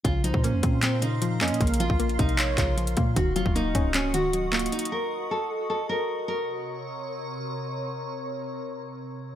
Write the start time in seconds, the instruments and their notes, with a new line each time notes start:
0.04 808-style bass A#1, synth pluck C#3, nylon-string guitar F4, ambient pad A#4 F5 C6, kick, closed hi-hat
0.24 808-style bass C2, synth pluck F3, nylon-string guitar D#4, soft synth lead C5, closed hi-hat
0.34 808-style bass A#2, kick
0.44 synth pluck A#3, nylon-string guitar C#4, closed hi-hat
0.53 808-style bass F2
0.63 808-style bass A#2, synth pluck C4, kick, closed hi-hat
0.82 nylon-string guitar C4, clap, closed hi-hat
1.02 synth pluck C#3, nylon-string guitar D#4, closed hi-hat
1.22 synth pluck F3, closed hi-hat
1.41 808-style bass F2, synth pluck A#3, nylon-string guitar C#4, soft synth lead D#5, clap, closed hi-hat
1.48 808-style bass A#2, closed hi-hat
1.54 closed hi-hat
1.61 808-style bass A#1, synth pluck C#3, nylon-string guitar A#3, kick, closed hi-hat
1.67 closed hi-hat
1.74 closed hi-hat
1.80 synth pluck F3, nylon-string guitar F4, closed hi-hat
1.90 808-style bass A#1, kick
1.99 synth pluck A#3, closed hi-hat
2.09 closed hi-hat
2.19 808-style bass A#1, synth pluck C3, nylon-string guitar D#4, kick, closed hi-hat
2.29 closed hi-hat
2.38 soft synth lead C#5, clap, closed hi-hat
2.57 808-style bass A#1, synth pluck C#3, nylon-string guitar F4, kick, clap, closed hi-hat
2.77 synth pluck F3, closed hi-hat
2.87 closed hi-hat
2.97 808-style bass A#2, synth pluck A#3, kick, closed hi-hat
3.16 808-style bass D#1, synth pluck D#3, nylon-string guitar F#4, ambient pad F#4 D#5 C#6, kick, closed hi-hat
3.36 808-style bass F#1, synth pluck F#3, nylon-string guitar F4, closed hi-hat
3.46 808-style bass D#1, kick
3.55 synth pluck A#3, nylon-string guitar D#4, closed hi-hat
3.75 808-style bass C#1, synth pluck C#4, kick, closed hi-hat
3.94 nylon-string guitar C#4, clap, closed hi-hat
4.14 synth pluck D#3, nylon-string guitar F#4, closed hi-hat
4.33 synth pluck F#3, closed hi-hat
4.52 synth pluck A#3, nylon-string guitar F4, clap, closed hi-hat
4.59 closed hi-hat
4.66 closed hi-hat
4.72 nylon-string guitar D#4, closed hi-hat
4.79 closed hi-hat
4.85 closed hi-hat
4.92 nylon-string guitar A#4
5.31 nylon-string guitar A4
5.70 nylon-string guitar A4
5.89 nylon-string guitar A#4
6.28 ambient pad C3 A#4 C#5, nylon-string guitar A#4